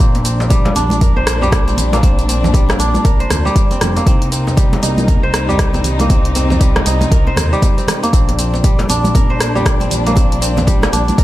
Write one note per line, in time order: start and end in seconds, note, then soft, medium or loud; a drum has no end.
0.00 0.70 A#1 loud
0.00 4.02 A#2 medium
0.00 1.82 A#3 medium
0.00 0.25 C4 medium
0.00 4.02 D4 loud
0.00 0.35 D#4 medium
0.00 0.25 A#4 medium
0.00 0.32 C5 loud
0.00 kick loud
0.00 closed hi-hat medium
0.00 shaker medium
0.15 closed hi-hat soft
0.15 djembe tone medium
0.25 1.67 C4 medium
0.25 open hi-hat medium
0.25 shaker loud
0.40 muted conga soft
0.40 djembe slap medium
0.40 shaker soft
0.50 1.41 G3 medium
0.50 kick loud
0.50 closed hi-hat medium
0.50 djembe tone medium
0.50 shaker medium
0.65 closed hi-hat soft
0.65 djembe slap loud
0.65 high conga loud
0.75 2.74 A#1 medium
0.75 2.43 D4 medium
0.75 open hi-hat medium
0.75 muted conga medium
0.75 djembe tone loud
0.75 shaker medium
0.90 closed hi-hat soft
0.90 high conga loud
0.90 shaker soft
1.01 2.29 A#4 medium
1.01 kick loud
1.01 closed hi-hat medium
1.01 low conga medium
1.01 djembe bass medium
1.01 shaker medium
1.16 2.35 C5 loud
1.16 muted conga soft
1.16 djembe tone medium
1.27 cross-stick loud
1.27 open hi-hat medium
1.27 shaker medium
1.42 2.52 G3 loud
1.42 djembe tone loud
1.42 djembe bass medium
1.42 shaker soft
1.52 kick loud
1.52 cross-stick medium
1.52 closed hi-hat medium
1.52 shaker medium
1.67 2.03 C4 medium
1.67 closed hi-hat soft
1.67 muted conga medium
1.67 high conga medium
1.67 shaker soft
1.76 open hi-hat medium
1.76 djembe tone medium
1.76 low conga medium
1.76 shaker loud
1.93 3.86 A#3 medium
1.93 closed hi-hat soft
1.93 djembe slap medium
1.93 high conga loud
1.93 shaker soft
2.03 2.28 C4 medium
2.03 kick loud
2.03 closed hi-hat medium
2.03 muted conga medium
2.03 djembe tone loud
2.03 shaker medium
2.19 closed hi-hat soft
2.19 shaker soft
2.28 3.71 C4 medium
2.28 open hi-hat medium
2.28 shaker loud
2.43 muted conga soft
2.43 djembe slap medium
2.43 djembe tone medium
2.43 djembe bass medium
2.43 low conga loud
2.43 shaker soft
2.54 3.44 G3 medium
2.54 kick loud
2.54 closed hi-hat medium
2.54 shaker medium
2.69 cross-stick medium
2.69 closed hi-hat soft
2.69 djembe slap loud
2.69 high conga loud
2.69 djembe tone medium
2.69 shaker soft
2.79 2.97 A#1 medium
2.79 4.47 D4 medium
2.79 open hi-hat medium
2.79 muted conga medium
2.79 shaker medium
2.94 closed hi-hat soft
2.94 high conga loud
2.94 shaker soft
3.05 3.23 A#1 loud
3.05 4.32 A#4 medium
3.05 kick loud
3.05 closed hi-hat medium
3.05 djembe tone medium
3.05 shaker medium
3.20 4.39 C5 loud
3.20 closed hi-hat soft
3.20 muted conga soft
3.30 3.48 D2 loud
3.30 cross-stick medium
3.30 open hi-hat medium
3.30 djembe tone medium
3.30 high conga medium
3.30 djembe bass medium
3.30 low conga medium
3.30 shaker medium
3.45 4.11 G3 loud
3.45 shaker soft
3.56 kick loud
3.56 closed hi-hat medium
3.56 high conga medium
3.56 shaker medium
3.71 4.06 C4 medium
3.71 closed hi-hat soft
3.71 muted conga soft
3.71 high conga medium
3.71 djembe tone medium
3.71 shaker soft
3.81 3.99 F1 loud
3.81 cross-stick medium
3.81 open hi-hat medium
3.81 high conga medium
3.81 low conga medium
3.81 shaker loud
3.96 5.89 A#3 medium
3.96 closed hi-hat soft
3.96 djembe tone loud
3.96 shaker soft
4.07 4.77 C2 loud
4.07 8.09 C3 medium
4.07 6.08 A#3 medium
4.07 4.31 C4 medium
4.07 8.09 D#4 medium
4.07 kick loud
4.07 closed hi-hat medium
4.07 muted conga medium
4.07 shaker medium
4.22 closed hi-hat soft
4.22 djembe tone medium
4.32 5.74 C4 medium
4.32 open hi-hat medium
4.32 shaker medium
4.47 muted conga soft
4.47 djembe slap medium
4.47 djembe tone medium
4.47 shaker soft
4.57 5.47 G3 medium
4.57 kick loud
4.57 closed hi-hat medium
4.57 shaker medium
4.73 closed hi-hat soft
4.73 djembe slap loud
4.73 high conga loud
4.83 6.80 C2 medium
4.83 6.45 D#4 medium
4.83 open hi-hat medium
4.83 muted conga soft
4.83 djembe tone medium
4.83 shaker medium
4.98 closed hi-hat soft
4.98 high conga loud
4.98 shaker soft
5.08 6.36 A#4 medium
5.08 kick loud
5.08 closed hi-hat medium
5.08 djembe tone medium
5.08 djembe bass medium
5.08 shaker medium
5.23 6.42 C5 loud
5.23 muted conga soft
5.34 cross-stick medium
5.34 open hi-hat medium
5.34 shaker medium
5.49 6.60 G3 loud
5.49 djembe tone medium
5.49 djembe bass medium
5.49 shaker soft
5.59 kick loud
5.59 cross-stick medium
5.59 closed hi-hat medium
5.59 shaker medium
5.73 6.10 C4 medium
5.73 closed hi-hat soft
5.73 muted conga soft
5.73 djembe tone loud
5.73 high conga medium
5.73 shaker soft
5.84 open hi-hat medium
5.84 low conga medium
5.84 shaker medium
5.99 7.93 A#3 medium
5.99 closed hi-hat soft
5.99 djembe slap medium
5.99 high conga medium
5.99 shaker soft
6.10 8.11 C4 medium
6.10 6.35 C4 medium
6.10 kick loud
6.10 closed hi-hat medium
6.10 muted conga medium
6.10 djembe tone medium
6.10 shaker medium
6.25 closed hi-hat soft
6.35 7.77 C4 medium
6.35 open hi-hat medium
6.35 djembe tone medium
6.35 shaker medium
6.50 djembe slap medium
6.50 muted conga soft
6.50 djembe bass medium
6.50 low conga loud
6.50 shaker soft
6.61 7.52 G3 medium
6.61 kick loud
6.61 closed hi-hat medium
6.61 shaker medium
6.76 cross-stick medium
6.76 closed hi-hat soft
6.76 djembe slap medium
6.76 djembe tone medium
6.76 high conga loud
6.86 7.04 C2 medium
6.86 8.48 D#4 medium
6.86 open hi-hat medium
6.86 muted conga soft
6.86 shaker medium
7.01 closed hi-hat soft
7.01 djembe tone medium
7.01 high conga loud
7.01 shaker soft
7.12 7.30 C2 medium
7.12 8.39 A#4 medium
7.12 kick loud
7.12 closed hi-hat medium
7.12 shaker soft
7.27 8.46 C5 loud
7.27 muted conga soft
7.36 7.55 D#2 loud
7.36 cross-stick medium
7.36 open hi-hat medium
7.36 djembe tone medium
7.36 high conga medium
7.36 djembe bass loud
7.36 low conga medium
7.36 shaker medium
7.53 8.18 G3 loud
7.53 shaker soft
7.62 kick loud
7.62 closed hi-hat medium
7.62 high conga medium
7.62 djembe tone medium
7.62 shaker medium
7.78 8.13 C4 medium
7.78 closed hi-hat soft
7.78 muted conga medium
7.78 high conga medium
7.78 shaker soft
7.88 cross-stick medium
7.88 open hi-hat medium
7.88 high conga medium
7.88 low conga medium
7.88 shaker medium
8.03 9.96 A#3 medium
8.03 closed hi-hat soft
8.03 djembe tone medium
8.03 shaker soft
8.13 8.84 A#1 loud
8.13 11.24 A#2 medium
8.13 8.38 C4 medium
8.13 11.24 D4 medium
8.13 kick loud
8.13 closed hi-hat medium
8.13 muted conga medium
8.13 shaker medium
8.29 closed hi-hat soft
8.29 djembe tone medium
8.39 9.80 C4 medium
8.39 open hi-hat medium
8.39 shaker medium
8.54 djembe slap medium
8.54 muted conga soft
8.54 shaker soft
8.64 9.54 G3 medium
8.64 kick loud
8.64 closed hi-hat medium
8.64 djembe tone medium
8.64 shaker soft
8.79 closed hi-hat soft
8.79 djembe slap loud
8.79 high conga loud
8.89 10.87 A#1 medium
8.89 10.57 D4 medium
8.89 open hi-hat medium
8.89 muted conga medium
8.89 djembe tone medium
8.89 shaker medium
9.04 closed hi-hat soft
9.04 high conga loud
9.04 shaker soft
9.15 10.42 A#4 medium
9.15 kick loud
9.15 closed hi-hat medium
9.15 low conga medium
9.15 djembe bass medium
9.15 shaker medium
9.30 10.49 C5 loud
9.30 muted conga soft
9.30 djembe tone medium
9.40 cross-stick medium
9.40 open hi-hat medium
9.40 shaker medium
9.55 10.66 G3 loud
9.55 djembe tone medium
9.55 djembe bass medium
9.55 shaker soft
9.66 kick loud
9.66 cross-stick medium
9.66 closed hi-hat medium
9.66 shaker medium
9.80 10.16 C4 medium
9.80 closed hi-hat soft
9.80 muted conga medium
9.80 high conga medium
9.80 shaker soft
9.91 open hi-hat loud
9.91 djembe tone medium
9.91 low conga medium
9.91 shaker medium
10.06 11.24 A#3 medium
10.06 closed hi-hat soft
10.06 djembe slap medium
10.06 high conga medium
10.06 shaker soft
10.16 10.41 C4 medium
10.16 kick loud
10.16 closed hi-hat medium
10.16 muted conga medium
10.16 djembe tone medium
10.16 shaker medium
10.32 closed hi-hat soft
10.42 11.24 C4 medium
10.42 open hi-hat medium
10.42 shaker medium
10.57 closed hi-hat soft
10.57 muted conga soft
10.57 djembe slap medium
10.57 djembe tone medium
10.57 low conga loud
10.57 djembe bass medium
10.57 shaker soft
10.67 11.24 G3 medium
10.67 kick loud
10.67 closed hi-hat medium
10.67 shaker medium
10.82 cross-stick medium
10.82 closed hi-hat soft
10.82 djembe slap loud
10.82 djembe tone medium
10.82 high conga loud
10.82 shaker soft
10.93 11.11 A#1 medium
10.93 11.24 D4 medium
10.93 open hi-hat medium
10.93 muted conga medium
10.93 shaker medium
11.08 closed hi-hat soft
11.08 high conga loud
11.08 shaker soft
11.18 11.24 A#1 loud
11.18 11.24 A#4 medium
11.18 kick loud
11.18 closed hi-hat medium
11.18 djembe tone medium
11.18 shaker medium